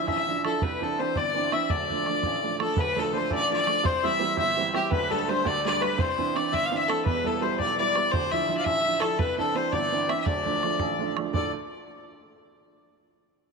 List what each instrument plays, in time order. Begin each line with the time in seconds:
Already playing: upright piano D1 F3 D4 E4
0.07 upright piano A1, accordion E5, fiddle E5, bodhran
0.28 upright piano F3 D4 E4
0.44 upright piano F3 D4 E4, accordion A4, fiddle A4, bodhran
0.62 upright piano C2, fiddle B4, accordion B4, bodhran
0.81 upright piano E3 C4 D4, accordion A4, fiddle A4, bodhran
0.99 upright piano E3 C4 D4, accordion C5, fiddle C5
1.16 upright piano G1, accordion D5, fiddle D5, bodhran
1.35 upright piano E3 C4 D4
1.52 upright piano E3 C4 D4, fiddle E5, accordion E5, bodhran
1.69 upright piano D1 D2, accordion D5, fiddle D5, bodhran
1.90 upright piano F3 A3 D4, bodhran
2.06 upright piano F3 A3 D4, bodhran
2.23 upright piano A1, bodhran
2.43 upright piano F3 A3 D4
2.60 upright piano F3 A3 D4, fiddle A4, accordion A4, bodhran
2.77 upright piano D1 D2, accordion B4, fiddle B4, bodhran
2.96 upright piano F3 A3 D4, accordion A4, fiddle A4, bodhran
3.12 upright piano F3 A3 D4, accordion C5
3.17 fiddle C5
3.31 upright piano A1, accordion D5, bodhran
3.35 fiddle D5
3.50 upright piano F3 A3 D4, accordion D5, fiddle D5
3.67 upright piano F3 A3 D4, bodhran
3.83 upright piano C2, accordion C5, fiddle C5, bodhran
4.03 upright piano E3 G3 C4, accordion E5, fiddle E5, bodhran
4.19 upright piano E3 G3 C4
4.37 upright piano G1, accordion E5, fiddle E5, bodhran
4.57 upright piano E3 G3 C4
4.74 upright piano E3 G3 C4, accordion G4, fiddle G4, bodhran
4.91 upright piano D1 D2, accordion B4, fiddle B4, bodhran
5.10 upright piano G3 A3 D4, accordion A4, fiddle A4, bodhran
5.28 upright piano G3 A3 D4, accordion C5, fiddle C5
5.45 upright piano D2, accordion D5, fiddle D5, bodhran
5.64 upright piano G3 A3 D4, accordion D5, fiddle D5
5.80 upright piano G3 A3 D4, accordion B4, fiddle B4, bodhran
5.98 upright piano C2, accordion C5, fiddle C5, bodhran
6.18 upright piano E3 C4 D4, bodhran
6.35 upright piano E3 C4 D4, accordion D5, fiddle D5, bodhran
6.52 upright piano G1, accordion E5, fiddle E5, bodhran
6.66 fiddle F5
6.72 upright piano E3 C4 D4
6.76 fiddle E5, accordion E5
6.88 upright piano E3 C4 D4, accordion A4, fiddle A4, bodhran
7.05 upright piano E1 E2, accordion B4, fiddle B4, bodhran
7.24 upright piano G3 B3 E4, accordion A4, fiddle A4, bodhran
7.41 upright piano G3 B3 E4, accordion C5, fiddle C5
7.58 upright piano B1, accordion D5, fiddle D5, bodhran
7.78 upright piano G3 B3 E4, fiddle D5, accordion D5
7.95 upright piano G3 B3 E4, bodhran
8.11 upright piano D1 D2, fiddle C5, accordion C5, bodhran
8.32 upright piano F3 D4 E4, fiddle E5, accordion E5, bodhran
8.49 upright piano F3 D4 E4
8.57 fiddle D5, accordion F5
8.64 upright piano A1, fiddle E5, accordion E5, bodhran
8.85 upright piano F3 D4 E4
9.00 upright piano F3 D4 E4, fiddle A4, accordion A4, bodhran
9.19 upright piano C2, fiddle B4, accordion B4, bodhran
9.38 upright piano E3 C4 D4, fiddle A4, accordion A4, bodhran
9.55 upright piano E3 C4 D4, accordion C5, fiddle C5
9.71 upright piano G1, accordion D5, fiddle D5, bodhran
9.92 upright piano E3 C4 D4
10.08 upright piano E3 C4 D4, fiddle E5, accordion E5, bodhran
10.20 fiddle E5
10.25 upright piano D1 D2, fiddle D5, accordion D5, bodhran
10.46 upright piano F3 A3 D4, bodhran
10.63 upright piano F3 A3 D4, bodhran
10.79 upright piano A1, bodhran
10.99 upright piano F3 A3 D4
11.17 upright piano F3 A3 D4, bodhran
11.33 upright piano D2 A2 F3 A3 D4 A4, fiddle D5, accordion D5, bodhran